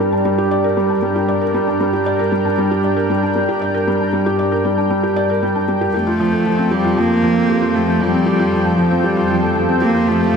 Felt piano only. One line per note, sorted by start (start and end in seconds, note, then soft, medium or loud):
0.00 0.25 G3 medium
0.00 0.12 D4 medium
0.00 0.38 G4 medium
0.00 0.64 A#4 medium
0.00 0.51 D5 medium
0.12 0.20 D4 medium
0.25 0.38 G3 medium
0.38 0.46 G4 medium
0.51 0.63 D5 medium
0.64 0.76 A#4 medium
0.77 0.89 G3 medium
0.89 0.97 D4 medium
1.02 1.15 G3 medium
1.16 1.23 G4 medium
1.28 1.41 D5 medium
1.41 1.54 A#4 medium
1.54 1.67 G3 medium
1.67 1.75 D4 medium
1.80 1.93 G3 medium
1.93 2.01 G4 medium
2.06 2.19 D5 medium
2.19 2.31 A#4 medium
2.32 2.44 G3 medium
2.45 2.52 D4 medium
2.58 2.70 G3 medium
2.71 2.78 G4 medium
2.84 2.96 D5 medium
2.97 3.09 A#4 medium
3.10 3.22 G3 medium
3.23 3.30 D4 medium
3.36 3.48 G3 medium
3.49 3.56 G4 medium
3.62 3.74 D5 medium
3.74 3.87 A#4 medium
3.87 4.00 G3 medium
4.00 4.08 D4 medium
4.13 4.25 G3 medium
4.26 4.33 G4 medium
4.39 4.51 D5 medium
4.52 4.64 A#4 medium
4.65 4.77 G3 medium
4.78 4.85 D4 medium
4.90 5.03 G3 medium
5.03 5.11 G4 medium
5.16 5.29 D5 medium
5.30 5.42 A#4 medium
5.43 5.55 G3 medium
5.55 5.63 D4 medium
5.68 5.81 G3 medium
5.81 5.89 G4 medium
5.94 6.06 G4 medium
6.07 6.19 F4 medium
6.20 6.32 F3 medium
6.33 6.40 A3 medium
6.46 6.58 F3 medium
6.59 6.66 C4 medium
6.71 6.84 G4 medium
6.84 6.97 F4 medium
6.97 7.10 F3 medium
7.10 7.18 A3 medium
7.23 7.35 F3 medium
7.36 7.43 C4 medium
7.49 7.61 G4 medium
7.62 7.74 F4 medium
7.75 7.87 F3 medium
7.88 7.95 A3 medium
8.00 8.13 F3 medium
8.13 8.21 C4 medium
8.26 8.39 G4 medium
8.39 8.52 F4 medium
8.52 8.65 F3 medium
8.65 8.73 A3 medium
8.78 8.91 F3 medium
8.91 8.99 C4 medium
9.04 9.16 G4 medium
9.17 9.29 F4 medium
9.30 9.42 F3 medium
9.43 9.50 A3 medium
9.56 9.68 F3 medium
9.69 9.76 C4 medium
9.82 9.94 G4 medium
9.95 10.07 F4 medium
10.08 10.20 F3 medium
10.21 10.28 A3 medium
10.34 10.37 F3 medium